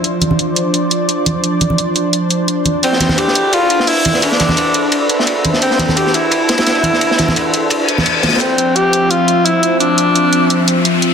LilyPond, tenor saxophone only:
\new Staff \with { instrumentName = "Tenor saxophone" } { \time 4/4 \key d \dorian \tempo 4 = 172 r1 | r1 | c'4 g'4 f'4 e'4 | d'2. r4 |
c'4 g'8 e'2~ e'8~ | e'2. r4 | c'4 g'4 f'4 e'4 | d'2. r4 | }